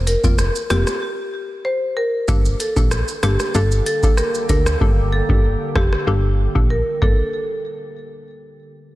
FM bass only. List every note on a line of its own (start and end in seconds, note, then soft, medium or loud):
0.00 0.16 F1 loud
0.24 0.50 F1 loud
0.71 0.85 F1 medium
2.28 2.55 G1 loud
2.76 3.03 A#1 medium
3.23 3.37 G1 medium
3.55 3.81 G1 loud
4.49 4.76 D2 medium
4.81 5.21 G1 loud
5.29 5.56 G1 medium
5.75 5.90 F1 medium
6.07 6.48 G1 medium
6.56 6.82 A#1 medium
7.02 7.16 G1 medium